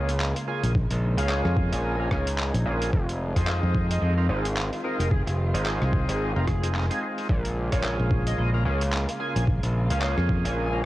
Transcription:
Already playing: C#2 C#3 G#3 A#3 C#4 F4 G#4, impact
0.09 closed hi-hat
0.20 clap
0.36 closed hi-hat
0.48 A#3 C#4 F4 G#4 G#5
0.63 A#1 G#5, closed hi-hat
0.75 D#4, kick
0.91 A#1, closed hi-hat
1.18 C#2 A#3 C#4 F4 G#4 F5, closed hi-hat
1.29 clap
1.45 F2, cross-stick
1.57 kick
1.73 A#1 G#5, closed hi-hat
2.00 A#3 C#4 F4 A#4
2.11 C#2 A#3 C#4 F4 G#4, kick, cross-stick
2.27 closed hi-hat
2.38 clap
2.54 A#1, closed hi-hat
2.66 A#1 A#3 C#4 F4 G#4
2.82 closed hi-hat
2.93 F1 D#3 G#3 C4 F4, kick
3.09 closed hi-hat
3.36 F2 C4 D#4 F4 G#4 C5, kick, cross-stick, closed hi-hat
3.47 clap
3.63 F2
3.75 kick
3.91 D#5, closed hi-hat
4.02 F2 D#5
4.18 C4 D#4 F4 A#4
4.29 G#1 C4 D#4 F4 G#4
4.45 closed hi-hat
4.57 clap
4.73 closed hi-hat
4.84 C4 D#4 F4 G#4 A#4
4.99 F1 A#4, closed hi-hat
5.11 G#4, kick
5.27 F1 G#4, closed hi-hat
5.54 G#1 C4 D#4 F4 G#4, closed hi-hat
5.66 clap
5.81 C2, cross-stick
5.93 kick
6.09 G#1 G#4, closed hi-hat
6.36 F1 C4 D#4 F4 A#4
6.47 kick, cross-stick, closed hi-hat
6.63 C4 D#4 F4 G#4, closed hi-hat
6.75 clap
6.90 C4 D#4 F4 G#4, closed hi-hat
7.02 G#4
7.18 closed hi-hat
7.29 A#1 C#3 A#3 F4, kick
7.45 closed hi-hat
7.72 A#1 A#3 C#4 F4 G#4 C#5, kick, cross-stick, closed hi-hat
7.84 clap
8.00 A#1
8.11 kick
8.27 D#5, closed hi-hat
8.38 A#1 D#5
8.54 A#3 C#4 F4 A#4
8.65 C#2 A#3 C#4 F4 G#4
8.81 closed hi-hat
8.93 clap
9.09 closed hi-hat
9.20 A#3 C#4 F4 G#4 G#5
9.36 A#1 G#5, closed hi-hat
9.47 kick
9.63 A#1, closed hi-hat
9.90 C#2 A#3 C#4 F4 G#4 F5, closed hi-hat
10.02 clap
10.18 F2, cross-stick
10.29 kick
10.45 A#1 G#5, closed hi-hat
10.72 A#3 C#4 F4 A#4

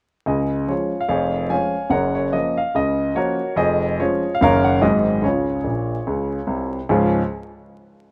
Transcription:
0.26 C#2 C#3 G#4 D#5
0.68 F3 G#3 C#4 F4 G#4 C#5
1.00 F5
1.08 F1 F2 G#4 C#5 F5
1.49 F3 G#3 C#4 C#5 F5 G#5
1.90 F#1 F#2 A#4 C#5 F#5
2.15 C#5
2.32 F3 A#3 C#4 D#5
2.58 F5
2.75 C#2 C#3 D#5
3.15 F3 A#3 C#4 F#4 A#4 C#5
3.56 F1 F2 G#4 D#5
3.99 F3 G#3 C#4 F4 G#4 C#5
4.35 F5
4.41 F#1 F#2 D#3 A#3 C#4 A#4 C#5 F5
4.64 F#5
4.81 G#1 G#2 F#3 G#3 C4 G#4 C5 D#5
5.22 C#2 C#3 F4 G#4 C#5
5.64 A#1 A#2
6.07 C#2 C#3
6.47 C2 C3
6.89 C#2 G#2 F3 G#3 C#4 F4

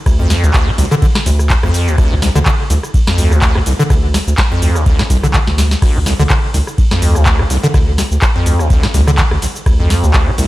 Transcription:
0.06 D2, kick, cross-stick, ride, shaker
0.19 F2
0.30 cross-stick, snare, open hi-hat, shaker
0.43 D2, shaker
0.54 D2, kick, cross-stick, clap, ride, shaker
0.67 D3
0.78 C2 D2, open hi-hat, shaker
0.91 D3, cross-stick, shaker
1.02 D3, kick, ride, shaker
1.15 cross-stick, snare
1.26 C2 D2, open hi-hat, shaker
1.39 cross-stick, shaker
1.50 kick, clap, ride, shaker
1.63 D2 F2, cross-stick
1.74 open hi-hat, shaker
1.87 D2, shaker
1.98 D2, kick, cross-stick, ride, shaker
2.11 D3
2.22 C2, cross-stick, snare, open hi-hat, shaker
2.35 D2 D3, shaker
2.46 D3, kick, cross-stick, clap, ride, shaker
2.70 C2 D2, open hi-hat, shaker
2.83 cross-stick, shaker
2.94 kick, ride, shaker
3.07 F2, cross-stick, snare
3.18 D2, open hi-hat, shaker
3.31 D2, cross-stick, shaker
3.42 D2, kick, clap, ride, shaker
3.55 D2 D3, cross-stick
3.66 C2, open hi-hat, shaker
3.79 D3, shaker
3.90 D2 D3, kick, cross-stick, ride, shaker
4.14 C2, cross-stick, snare, open hi-hat, shaker
4.27 D2, shaker
4.38 kick, cross-stick, snare, clap, ride, shaker
4.51 F2
4.62 D2, open hi-hat, shaker
4.75 D2, cross-stick, shaker
4.86 D2, kick, ride, shaker
4.99 D3, cross-stick, snare
5.10 C2, kick, open hi-hat, shaker
5.23 D3, cross-stick, shaker
5.34 D3, kick, clap, ride, shaker
5.47 D2, snare
5.58 C2, snare, open hi-hat, shaker
5.71 snare, shaker
5.82 D2, kick, cross-stick, crash, ride, shaker
5.95 D3
6.06 C2, cross-stick, snare, open hi-hat, shaker
6.19 D2 D3, shaker
6.30 D3, kick, cross-stick, clap, ride, shaker
6.54 C2 D2, open hi-hat, shaker
6.67 cross-stick, shaker
6.78 kick, ride, shaker
6.91 F2, cross-stick, snare
7.02 D2, open hi-hat, shaker
7.15 D2, cross-stick, shaker
7.26 D2, kick, clap, ride, shaker
7.39 D2 D3, cross-stick
7.50 C2, open hi-hat, shaker
7.63 D3, shaker
7.74 D2 D3, kick, cross-stick, ride, shaker
7.98 C2, cross-stick, snare, open hi-hat, shaker
8.11 D2, shaker
8.22 kick, cross-stick, clap, ride, shaker
8.35 F2
8.46 D2, open hi-hat, shaker
8.59 D2, cross-stick, shaker
8.70 D2, kick, ride, shaker
8.83 D3, cross-stick, snare
8.94 C2 D2, open hi-hat, shaker
9.07 D3, cross-stick, shaker
9.18 D3, kick, clap, ride, shaker
9.31 D2, cross-stick
9.42 C2, open hi-hat, shaker
9.56 shaker
9.66 D2, kick, cross-stick, ride, shaker
9.79 F2
9.90 cross-stick, snare, open hi-hat, shaker
10.03 D2, shaker
10.14 D2, kick, cross-stick, clap, ride, shaker
10.27 D3
10.38 C2 D2, open hi-hat, shaker

